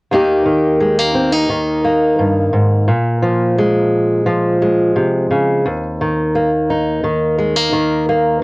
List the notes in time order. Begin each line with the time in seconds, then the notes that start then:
0.11 D#2 D#3 A#3 D#4 G4
0.46 D#3
0.80 G#3
0.99 A#3
1.15 C4
1.32 D#4
1.49 D#3
1.84 A#3
2.19 G2
2.53 G#2
2.88 A#2
3.22 F3
3.58 G#3
4.26 F3
4.62 G#3
4.96 C3
5.31 C#3
5.66 D#2
6.01 D#3
6.35 A#3
6.70 D#4
7.04 D#3
7.39 G#3
7.56 A#3
7.73 D#3
8.09 A#3